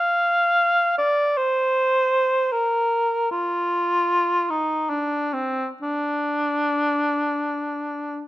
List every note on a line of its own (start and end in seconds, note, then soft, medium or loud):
0.00 0.97 F5 medium
0.98 1.39 D5 medium
1.37 2.54 C5 medium
2.52 3.31 A#4 medium
3.32 4.52 F4 medium
4.50 4.91 D#4 medium
4.90 5.35 D4 soft
5.34 5.68 C4 soft
5.82 8.24 D4 medium